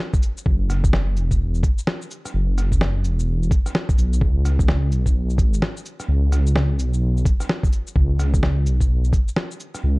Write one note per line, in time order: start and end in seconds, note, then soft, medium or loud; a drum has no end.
0.14 kick loud
0.14 shaker soft
0.23 cabasa medium
0.37 shaker medium
0.46 1.18 F#1 loud
0.46 kick loud
0.70 cross-stick medium
0.70 cabasa medium
0.84 kick loud
0.84 shaker medium
0.93 snare loud
1.17 1.62 E1 loud
1.17 cabasa medium
1.31 kick medium
1.31 shaker medium
1.54 shaker soft
1.63 kick loud
1.63 cabasa medium
1.78 shaker medium
1.87 snare loud
2.02 shaker soft
2.11 cabasa medium
2.25 cross-stick soft
2.25 cabasa soft
2.25 shaker medium
2.34 3.06 F#1 loud
2.58 cross-stick soft
2.58 cabasa medium
2.72 kick medium
2.72 shaker medium
2.81 snare loud
3.04 3.50 E1 medium
3.04 cabasa medium
3.19 shaker medium
3.43 shaker soft
3.51 kick loud
3.51 cabasa medium
3.66 cross-stick soft
3.66 shaker medium
3.75 snare loud
3.89 kick loud
3.89 shaker soft
3.98 4.20 B1 medium
3.98 cabasa medium
4.13 shaker medium
4.21 4.93 C#2 medium
4.21 kick loud
4.45 cross-stick medium
4.45 cabasa medium
4.59 kick loud
4.59 shaker medium
4.68 snare loud
4.91 5.40 B1 loud
4.91 cabasa medium
5.06 kick medium
5.06 shaker medium
5.30 shaker soft
5.38 5.60 G#1 medium
5.38 kick loud
5.38 cabasa medium
5.53 shaker medium
5.62 snare loud
5.77 shaker soft
5.86 cabasa medium
6.00 cross-stick soft
6.00 cabasa soft
6.00 shaker medium
6.08 6.79 C#2 medium
6.32 cross-stick medium
6.32 cabasa medium
6.46 shaker medium
6.56 snare loud
6.78 7.24 B1 medium
6.78 cabasa medium
6.93 shaker medium
7.17 shaker soft
7.25 kick loud
7.25 cabasa medium
7.40 cross-stick soft
7.40 shaker medium
7.49 snare loud
7.63 kick loud
7.63 shaker soft
7.73 cabasa medium
7.87 shaker medium
7.96 8.67 C#2 loud
7.96 kick loud
8.19 cross-stick medium
8.19 cabasa medium
8.34 kick medium
8.34 shaker medium
8.43 snare loud
8.66 9.12 B1 loud
8.66 cabasa medium
8.80 kick medium
8.80 shaker medium
9.04 shaker soft
9.13 kick loud
9.13 cabasa medium
9.28 shaker medium
9.36 snare loud
9.51 shaker soft
9.60 cabasa medium
9.75 cross-stick soft
9.75 cabasa soft
9.75 shaker medium
9.84 9.99 C#2 loud